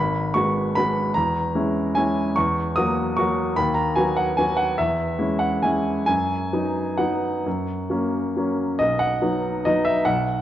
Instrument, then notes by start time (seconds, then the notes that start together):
grand piano
Already playing: G#1 B5
0.34 G#3 B3 F#4 C#6
0.75 G#3 B3 F#4 B5
1.14 E2 A#5
1.55 G#3 C#4 E4
1.95 G#3 C#4 E4 G#5
2.36 E2 C#6
2.75 F#3 A#3 F#4 D#6
3.16 F#3 A#3 F#4 C#6
3.56 D#2 B5
3.74 A#5
3.95 F#3 B3 F#4 G#5
4.16 F#5
4.37 F#3 B3 F#4 G#5
4.57 F#5
4.78 E2 E5
5.19 G#3 C#4 E4
5.39 F#5
5.62 G#3 C#4 E4 G#5
6.06 F#2 G#5
6.53 F#3 B3 D#4
6.97 F#3 B3 D#4 F#5
7.46 F#2
7.90 F#3 A#3 C#4
8.37 F#3 A#3 C#4
8.79 B1 D#5
9.00 F#5
9.22 F#3 B3 D#4
9.65 F#3 B3 D#4 D#5
9.85 E5
10.05 B1 F#5